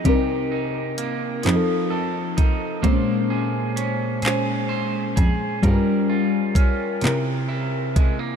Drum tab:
HH |x-xx-x|x-xx-x|x-xx-x|
CP |---x--|---x--|---x--|
BD |o----o|o----o|o-o--o|